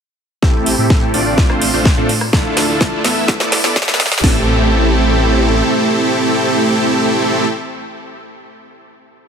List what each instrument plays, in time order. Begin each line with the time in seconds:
0.42 detuned saw bass A1, supersaw synth A3 C4 E4 G4 A4, kick, snare
0.66 open hi-hat
0.78 detuned saw bass A2, supersaw synth A3 C4 E4 G4 A4
0.90 kick, snare
1.14 detuned saw bass A1, supersaw synth A3 C4 D4 F4 D5, open hi-hat
1.38 kick, snare
1.50 detuned saw bass A1, supersaw synth A3 C4 D4 F4 C5, cross-stick
1.62 open hi-hat
1.73 detuned saw bass A1, supersaw synth A3 C4 D4 F4 C5
1.85 kick, snare
1.97 detuned saw bass A2, supersaw synth A3 C4 D4 F4 A4
2.09 open hi-hat
2.21 cross-stick
2.33 detuned saw bass D2, supersaw synth A3 D4 E4 F4 A4, kick, snare
2.57 snare, open hi-hat
2.69 detuned saw bass D2, supersaw synth A3 D4 E4 F4 A4
2.81 kick, snare
3.04 detuned saw bass E2, supersaw synth A3 B3 E4 A4 E5, snare, open hi-hat
3.28 kick, snare
3.40 detuned saw bass E2, supersaw synth A3 B3 E4 A4 D5, snare
3.52 snare, open hi-hat
3.64 detuned saw bass E2, supersaw synth A3 B3 E4 A4 D5, snare
3.76 kick, snare
3.82 snare
3.88 detuned saw bass E2, supersaw synth A3 B3 E4 A4 B4, snare
3.94 snare
4.00 snare, open hi-hat
4.06 snare
4.12 snare
4.18 snare
4.24 detuned saw bass A1, supersaw synth A3 C4 E4 G4 A4, kick, snare, open hi-hat